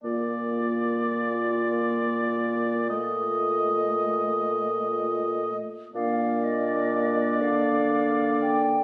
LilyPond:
<<
  \new Staff \with { instrumentName = "Flute" } { \time 6/8 \key bes \major \tempo 4. = 41 r2. | r2. | f''8 ees''4 f''4 g''8 | }
  \new Staff \with { instrumentName = "Oboe" } { \time 6/8 \key bes \major d''2. | ees''2~ ees''8 r8 | d''2. | }
  \new Staff \with { instrumentName = "Clarinet" } { \time 6/8 \key bes \major f'2.~ | f'2~ f'8 r8 | d'2. | }
  \new Staff \with { instrumentName = "French horn" } { \time 6/8 \key bes \major bes2. | a2~ a8 r8 | bes2. | }
  \new Staff \with { instrumentName = "Bassoon" } { \clef bass \time 6/8 \key bes \major bes,2.~ | bes,2~ bes,8 r8 | bes,4. d4. | }
>>